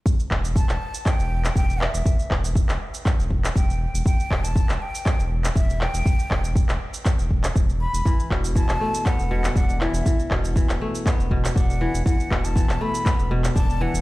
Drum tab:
SH |xx-xxx-xxx-xxx-x|xx-xxx-xxx-xxx-x|xx-xxx-xxx-xxx-x|xx-xxx-xxx-xxx-x|
CP |--x--x--x--x--x-|--x--x--x--x----|--x--x--x--x--x-|--x--x--x--x----|
BD |o-o-o---o---o---|o-o-o---o-o-o---|o-o-o---o---o---|o-o-o---o-o-o---|

SH |xx-xxx-xxx-xxx-x|xx-xxx-xxx-xxx-x|xx-xxx-xxx-xxx-x|
CP |--x--x--x--x--x-|--x--x--x--x----|--x--x--x--x----|
BD |o-o-o---o---o---|o-o-o---o-o-o---|o-o-o---o---o---|